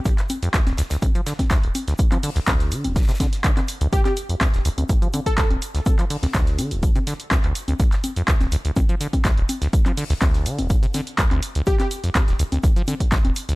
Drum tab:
HH |x-x-o-x-x-x-o-x-x-x-o-x-x-x-o-x-|x-x-o-x-x-x-o-x-x-x-o-x-x-x-o-x-|x-x-o-x-x-x-o-x-x-x-o-x-x-x-o-x-|x-x-o-x-x-x-o-x-x-x-o-x-x-x-o-x-|
SH |x-x-x-x-x-x-x-x-x-x-x-x-x---x-x-|x-x-x-x-x-x-x-x-xxxxx-x-x-x-x-x-|x-x-x-x-x-x-x-x-x-x-x-x-x---x-x-|x-x-x-x-x-x-x-x-x-x-x-x-x---x-x-|
CP |--x-----x---------------x-------|--x-----x---------------x-x-----|--x-----x---------------x-------|--x-----x---------------x-x-----|
SD |--o-----o-o-o-o-----o-o-o-----o-|------o-o-o-----ooooo-o---o-----|--o-----o-o-------------o-----o-|------o-o-o---------o---o-------|
CG |----o-----o-----o-----o-----o---|--o-----o-----o-----o-----o-----|--o-----o-----o-----o-----o-----|o-----o-----o-----o-----o-----o-|
BD |o-------o-------o-----o-o-------|o-------o-------o---o---o-------|o-------o-------o-----o-o-------|o-------o-------o-------o-------|

HH |x-x-o-x-x-x-o-x-x-x-o-x-x-x-o-x-|x-x-o-x-x-x-o-x-x-x-o-x-x-x-o-x-|x-x-o-x-x-x-o-x-x-x-o-x-x-x-o-x-|
SH |x-x-x-x-x-x-x-x-x-x-x-x-x---x-x-|x-x-x-x-x-x-x-x-x-x-x-x-x---x-x-|x-x-x-x-x-x-x-x-x-x-x-x-x---x-x-|
CP |--x-----x---------------x-------|--x-----x---------------x-x-----|--x-----x---------------x-------|
SD |--o-----o-o-------------o-----o-|------o-o-o---------o---o-------|--o-----o-o-------------o-----o-|
CG |----o-----o-----o-----o-----o---|--o-----o-----o-----o-----o-----|--o-----o-----o-----o-----o-----|
BD |o-------o-------o-----o-o-------|o-------o-------o-------o-------|o-------o-------o-----o-o-------|